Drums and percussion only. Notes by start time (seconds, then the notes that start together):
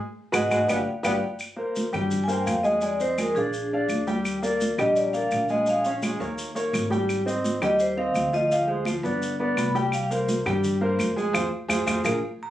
0.34 high conga, claves, maracas
0.51 high conga, claves, maracas
0.69 high conga, claves, maracas
1.04 high conga, claves, maracas
1.39 high conga, claves, maracas
1.59 high conga
1.76 high conga, maracas
1.93 high conga, low conga, claves, maracas
2.11 high conga, low conga, maracas
2.29 high conga, maracas
2.47 high conga, claves, maracas
2.64 high conga, maracas
2.81 high conga, maracas
3.00 high conga, maracas
3.18 high conga, claves, maracas
3.36 high conga, maracas
3.53 high conga, maracas
3.72 high conga
3.89 high conga, claves, maracas
4.07 high conga, maracas
4.25 high conga, claves, maracas
4.43 high conga, maracas
4.61 high conga, maracas
4.79 high conga, low conga, claves, maracas
4.96 high conga, maracas
5.14 high conga, maracas
5.31 high conga, claves, maracas
5.48 high conga, maracas
5.66 high conga, maracas
5.85 high conga, maracas
6.03 high conga, claves, maracas
6.20 high conga, maracas
6.38 high conga, maracas
6.56 high conga, maracas
6.73 high conga, claves, maracas
6.90 high conga, maracas
7.09 high conga, claves, maracas
7.27 high conga, maracas
7.44 high conga, maracas
7.62 high conga, low conga, claves, maracas
7.79 high conga, maracas
7.97 high conga
8.15 high conga, claves, maracas
8.33 high conga, maracas
8.51 high conga, maracas
8.69 high conga
8.85 high conga, claves, maracas
9.04 high conga, maracas
9.22 high conga, maracas
9.40 high conga
9.57 high conga, claves, maracas
9.75 high conga, maracas
9.92 high conga, claves, maracas
10.11 high conga, maracas
10.29 high conga, maracas
10.46 high conga, low conga, claves, maracas
10.64 high conga, low conga, maracas
10.82 high conga
11.00 high conga, claves, maracas
11.17 high conga, maracas
11.34 high conga, claves, maracas
11.69 high conga, claves, maracas
11.87 high conga, claves, maracas
12.04 high conga, claves, maracas